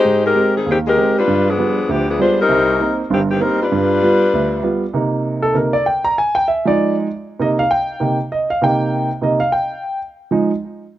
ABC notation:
X:1
M:4/4
L:1/8
Q:"Swing" 1/4=196
K:Cm
V:1 name="Saxophone section"
[A,EGc] [A,EGB]2 [E,G,CA] [E,A,CG] [A,EGB]2 [G,DF=B]- | [G,DF=B] [F,=B,DA]3 [F,B,DG] [F,B,DA] [A,DFc] [G,CE_B]- | [G,CEB]3 z [E,B,CG] [E,B,CG] [G,CEB] [G,DF=B]- | [G,DF=B]6- [G,DFB] z |
z8 | z8 | z8 | z8 |
z8 |]
V:2 name="Grand piano"
z8 | z8 | z8 | z8 |
z3 =A B d g b | a g =e d2 z3 | e f g3 z e f | g3 z e f g2- |
g z6 z |]
V:3 name="Grand piano"
A,,2 [A,CG] z E,,2 [A,CG] z | G,,2 [G,=B,F] z D,,2 [G,B,F] z | C,,2 [B,CE] z [G,,,G,,]2 [B,CE] z | G,,2 [G,=B,F] z D,,2 [G,B,F] z |
[C,B,E]4 [C,B,E] z3 | z3 [F,A,E]3 z2 | [C,B,E] z3 [C,B,E] z3 | [C,B,E]3 z [C,B,E] z3 |
z3 [F,A,E] z4 |]